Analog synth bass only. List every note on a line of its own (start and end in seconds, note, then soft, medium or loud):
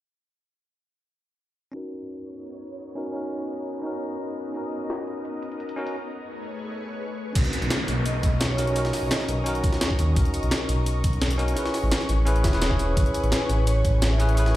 7.36 7.44 B1 loud
7.62 7.70 B1 medium
7.88 7.96 B1 medium
7.97 8.22 B1 medium
8.23 8.92 B1 loud
9.03 9.10 B1 medium
9.29 9.37 B1 medium
9.38 9.62 B1 medium
9.99 10.15 D#2 medium
10.16 10.25 B1 loud
10.43 10.51 B1 medium
10.69 10.77 B1 medium
10.78 11.03 B1 medium
11.04 11.55 B1 loud
11.83 11.91 A1 medium
12.10 12.18 A1 medium
12.19 12.46 A1 medium
12.44 12.78 E1 medium
12.79 12.95 E1 medium
12.97 13.05 A1 loud
13.24 13.31 A1 medium
13.50 13.58 A1 medium
13.59 13.83 A1 medium
13.85 14.54 A1 loud